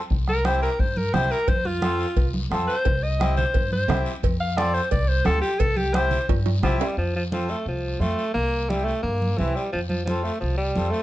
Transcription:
0.10 upright bass C2, bombo low, high conga, long guiro
0.28 alto saxophone A#4, bombo rim, high conga
0.45 accordion C4 E4 G4, alto saxophone C5, bombo rim, high conga, short guiro
0.63 alto saxophone A#4, short guiro
0.79 upright bass G2, alto saxophone C5, bombo low, high conga, long guiro
0.97 alto saxophone A#4, high conga
1.13 upright bass C2, accordion C4 E4 G4, alto saxophone C5, bombo rim, high conga, low conga, short guiro
1.31 alto saxophone A#4, short guiro
1.48 upright bass F2, alto saxophone C5, bombo low, cowbell, high conga, long guiro
1.65 alto saxophone F4, high conga
1.81 accordion C4 F4 A4, bombo rim, high conga, short guiro
2.00 short guiro
2.16 upright bass C2, bombo low, cowbell, high conga, long guiro
2.34 high conga
2.51 upright bass F2, accordion C4 F4 A4, bombo rim, high conga, short guiro
2.67 alto saxophone C5, short guiro
2.85 upright bass C2, bombo low, cowbell, high conga, long guiro
3.03 alto saxophone D#5
3.19 accordion C4 E4 G4, bombo rim, high conga, short guiro
3.37 alto saxophone C5, low conga, short guiro
3.54 upright bass G2, bombo low, cowbell, high conga, long guiro
3.72 alto saxophone C5, high conga
3.88 upright bass C2, accordion C4 E4 G4, bombo rim, high conga, low conga, low timbale, short guiro
4.06 short guiro
4.23 upright bass F2, bombo low, cowbell, high conga, long guiro
4.40 alto saxophone F5
4.57 accordion C4 F4 A4, alto saxophone D5, bombo rim, high conga, short guiro
4.74 alto saxophone C5, short guiro
4.91 upright bass C2, alto saxophone D5, bombo low, cowbell, high conga, long guiro
5.08 alto saxophone C5
5.25 upright bass D2, accordion C4 F4 G4, alto saxophone A4, bombo rim, high conga, low timbale, short guiro
5.42 alto saxophone G4, short guiro
5.59 upright bass C2, alto saxophone A4, bombo low, cowbell, high conga, long guiro
5.76 alto saxophone G4, high conga
5.94 accordion C4 E4 G4, alto saxophone C5, bombo rim, high conga, short guiro
6.11 low conga, short guiro
6.29 upright bass G2, bombo low, cowbell, high conga, high timbale, long guiro
6.46 high conga, high timbale
6.63 upright bass C2, alto saxophone F3, accordion C4 E4 G4, bombo low, bombo rim, high conga, low conga, short guiro
6.80 alto saxophone G3, low timbale, short guiro
6.97 upright bass F2, alto saxophone F3, high conga, long guiro
7.16 alto saxophone F3
7.32 alto saxophone F3, accordion C4 F4 A4, high conga, short guiro
7.48 alto saxophone A3, short guiro
7.66 upright bass C2, alto saxophone F3, high conga, long guiro
7.99 upright bass F2, alto saxophone A3, accordion C4 F4 A4, high conga, short guiro
8.18 short guiro
8.34 upright bass C2, alto saxophone A#3, high conga, long guiro
8.68 alto saxophone G3, accordion C4 E4 G4, high conga, short guiro
8.84 alto saxophone A3, short guiro
9.03 upright bass G2, alto saxophone A#3, high conga, long guiro
9.22 high conga
9.38 upright bass C2, alto saxophone E3, accordion C4 E4 G4, high conga, short guiro
9.56 alto saxophone G3, short guiro
9.73 upright bass F2, alto saxophone F3, high conga, long guiro
9.89 alto saxophone F3, high conga
10.05 alto saxophone F3, accordion C4 F4 A4, high conga, short guiro
10.24 alto saxophone A3, short guiro
10.40 upright bass C2, alto saxophone F3, high conga, long guiro
10.57 alto saxophone G3
10.75 upright bass F2, accordion C4 F4 A4, high conga, short guiro
10.91 alto saxophone A3, short guiro

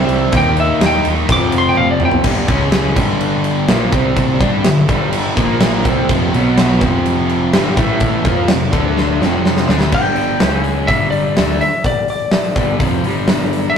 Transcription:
Already playing: overdriven electric guitar C3 G3 C4, lead electric guitar E5
0.08 picked electric bass C2, crash
0.32 picked electric bass D#2, overdriven electric guitar D#3 A#3 D#4, kick, crash
0.37 lead electric guitar G5
0.57 lead electric guitar E5, crash
0.81 picked electric bass D#2, snare, crash
0.86 lead electric guitar G5
1.04 picked electric bass D#2, overdriven electric guitar D#3 A#3 D#4, crash
1.29 picked electric bass F1, overdriven electric guitar F2 C3, lead electric guitar D6, kick, crash
1.33 overdriven electric guitar F3
1.52 picked electric bass F1, crash
1.58 lead electric guitar C6
1.69 lead electric guitar G5
1.75 picked electric bass F1, lead electric guitar F5, high tom
1.91 lead electric guitar D5
2.00 picked electric bass F1, overdriven electric guitar C3 F3, mid tom
2.04 overdriven electric guitar F2, lead electric guitar G5
2.11 floor tom
2.24 picked electric bass G1, overdriven electric guitar G2 D3 G3, kick, crash
2.48 picked electric bass C#2, overdriven electric guitar C#3 G#3 C#4, kick, crash
2.72 snare, crash
2.96 picked electric bass G1, overdriven electric guitar G2 D3 G3, kick, crash
3.21 crash
3.44 crash
3.68 picked electric bass A#1, overdriven electric guitar A#2 F3 A#3, snare, crash
3.91 picked electric bass C2, overdriven electric guitar C3 G3 C4, kick, crash
4.17 kick, crash
4.39 picked electric bass G2, overdriven electric guitar G3 D4 G4, kick, crash
4.64 picked electric bass G1, overdriven electric guitar G2 D3, snare, crash
4.87 picked electric bass G1, overdriven electric guitar G2 D3 G3, kick, crash
4.92 distorted electric guitar G3
5.13 crash
5.36 picked electric bass A#1, overdriven electric guitar A#2 F3 A#3, kick, crash
5.60 snare, crash
5.85 picked electric bass C2, overdriven electric guitar C3 G3 C4, kick, crash
6.09 picked electric bass F1, overdriven electric guitar F2 C3 F3, kick, crash
6.34 picked electric bass B1, overdriven electric guitar B2 F#3 B3, crash
6.57 snare, crash
6.81 picked electric bass F1, overdriven electric guitar F2 C3 F3, kick, crash
7.06 crash
7.29 crash
7.53 picked electric bass G1, overdriven electric guitar G2 D3 G3, snare, crash
7.77 picked electric bass A1, overdriven electric guitar A2 E3 A3, kick, crash
8.00 kick, crash
8.25 picked electric bass F2, overdriven electric guitar F3 C4 F4, kick, crash
8.48 picked electric bass F1, overdriven electric guitar F2 C3, snare, crash
8.73 picked electric bass D2, overdriven electric guitar D3 A3 D4, kick, crash
8.97 snare
9.21 picked electric bass F1, overdriven electric guitar F2 C3 F3, snare
9.45 snare
9.57 snare
9.68 picked electric bass D2, overdriven electric guitar D3 A3 D4, snare
9.81 snare
9.92 picked electric bass G1, overdriven electric guitar G2 D3 G3, lead electric guitar G5, kick, crash
10.16 open hi-hat
10.40 picked electric bass C#2, overdriven electric guitar C#3 G#3 C#4, snare, open hi-hat
10.64 open hi-hat
10.87 picked electric bass G1, overdriven electric guitar G2 D3 G3, lead electric guitar E5, kick, open hi-hat
11.10 lead electric guitar D5, open hi-hat
11.37 picked electric bass D2, overdriven electric guitar D3 A3 D4, snare, open hi-hat
11.61 lead electric guitar E5, open hi-hat
11.84 lead electric guitar D5, kick, open hi-hat
12.08 lead electric guitar D5, open hi-hat
12.31 snare, open hi-hat
12.55 picked electric bass G1, overdriven electric guitar G2 D3 G3, kick, open hi-hat
12.80 picked electric bass F1, overdriven electric guitar F2 C3 F3, kick, open hi-hat
13.04 picked electric bass G1, overdriven electric guitar G2 D3 G3, open hi-hat
13.28 snare, open hi-hat
13.53 open hi-hat
13.70 lead electric guitar E5

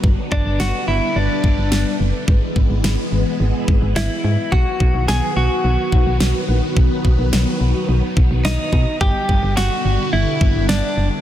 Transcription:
0.04 fm bass G1, string machine D3 G3 B3, kick
0.32 fm bass G1, clean electric guitar D4, kick
0.46 fm bass G1
0.60 fm bass G1, clean electric guitar F#4, snare
0.88 fm bass G1, clean electric guitar E4
1.16 fm bass G1, clean electric guitar D4
1.44 fm bass G1, kick
1.58 fm bass G1
1.72 fm bass G1, snare
2.00 fm bass F#1
2.28 fm bass G#1, string machine E3 G#3 B3, kick
2.56 fm bass G#1, kick
2.70 fm bass G#1
2.84 fm bass G#1, snare
3.12 fm bass G#1
3.40 fm bass G#1
3.68 fm bass G#1, kick
3.82 fm bass G#1
3.96 fm bass G#1, clean electric guitar E4, snare
4.24 fm bass G#2
4.52 fm bass B1, string machine D#3 F#3 B3, clean electric guitar F#4, kick
4.80 fm bass B1, kick
4.94 fm bass B1
5.08 fm bass B1, clean electric guitar G#4, snare
5.36 fm bass B1, clean electric guitar F#4
5.64 fm bass B1
5.92 fm bass B1, kick
6.06 fm bass B1
6.20 fm bass B1, snare
6.49 fm bass A#1
6.77 fm bass B1, kick
7.05 fm bass B1, kick
7.19 fm bass B1
7.33 fm bass B1, snare
7.61 fm bass B1
7.89 fm bass B1
8.17 fm bass B1, kick
8.31 fm bass B1
8.45 fm bass B1, clean electric guitar D#4, snare
8.73 fm bass B2, kick
9.01 fm bass G1, string machine D3 G3 B3, clean electric guitar G4, kick
9.29 fm bass G1, kick
9.43 fm bass G1
9.57 fm bass G1, clean electric guitar F#4, snare
9.85 fm bass G1
10.13 fm bass G1, clean electric guitar E4
10.41 fm bass G1, kick
10.55 fm bass G1
10.69 fm bass G1, clean electric guitar D4, snare
10.97 fm bass F#1

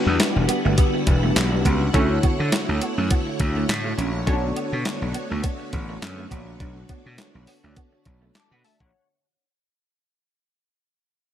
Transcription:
Already playing: string machine D3 G3 B3 E4 F#5, analog polysynth D4 F#4 G4 B4
0.07 slap bass E2, muted clean electric guitar stroke
0.20 muted clean electric guitar stroke, snare, clap, closed hi-hat
0.36 slap bass E1
0.49 clean electric guitar B3, closed hi-hat
0.65 slap bass G1, clean electric guitar A3
0.78 clean electric guitar B3, kick, closed hi-hat
0.94 muted clean electric guitar stroke
1.07 slap bass E1, kick, closed hi-hat
1.23 clean electric guitar A3
1.36 slap bass B1, muted clean electric guitar stroke, snare, clap, closed hi-hat
1.52 clean electric guitar G3
1.65 slap bass C#2, clean electric guitar B3, kick, closed hi-hat
1.94 slap bass D2, string machine A3 C#5, clean electric guitar C#4, analog polysynth E4 F#4 A4 C#5, kick, closed hi-hat
2.23 clean electric guitar B3, kick, closed hi-hat
2.40 slap bass D3, muted clean electric guitar stroke
2.52 muted clean electric guitar stroke, snare, clap, closed hi-hat
2.69 slap bass D2
2.82 clean electric guitar B3, closed hi-hat
2.98 slap bass F#2, clean electric guitar A3
3.10 clean electric guitar B3, kick, closed hi-hat
3.27 muted clean electric guitar stroke
3.40 slap bass D2, kick, closed hi-hat
3.56 clean electric guitar A3
3.69 slap bass A2, muted clean electric guitar stroke, snare, clap, closed hi-hat
3.85 clean electric guitar A3
3.98 slap bass A#1, clean electric guitar C#4, closed hi-hat
4.26 slap bass B1, string machine A3 B3 F#4, analog polysynth C#4 F#4 A4 C#5, clean electric guitar D4, kick, closed hi-hat
4.33 analog polysynth D4
4.56 clean electric guitar B3, closed hi-hat
4.73 slap bass B2, muted clean electric guitar stroke
4.85 muted clean electric guitar stroke, snare, clap, closed hi-hat
5.02 slap bass B1
5.14 clean electric guitar B3, closed hi-hat
5.30 slap bass D2, clean electric guitar A3
5.43 clean electric guitar B3, kick, closed hi-hat
5.60 muted clean electric guitar stroke
5.73 slap bass A1, kick, closed hi-hat
5.89 clean electric guitar A3
6.02 slap bass F#2, muted clean electric guitar stroke, snare, clap, closed hi-hat
6.18 clean electric guitar A3
6.31 slap bass A#1, clean electric guitar B3, kick, closed hi-hat
6.60 slap bass B1, string machine D4, clean electric guitar D4, kick, closed hi-hat
6.89 clean electric guitar B3, kick, closed hi-hat
7.06 slap bass B2, muted clean electric guitar stroke
7.18 muted clean electric guitar stroke, snare, clap, closed hi-hat
7.35 slap bass B1
7.47 clean electric guitar B3, open hi-hat
7.64 slap bass D2, clean electric guitar A3
7.76 clean electric guitar B3, kick, closed hi-hat
7.93 muted clean electric guitar stroke
8.05 slap bass B1, kick, closed hi-hat
8.22 clean electric guitar A3
8.35 analog polysynth A5 D6, muted clean electric guitar stroke, snare, clap, closed hi-hat
8.51 slap bass B2, clean electric guitar B3, analog polysynth F#5 B5
8.64 clean electric guitar A3, analog polysynth E5 A5, open hi-hat
8.80 slap bass A#1, analog polysynth C#5 F#5, kick

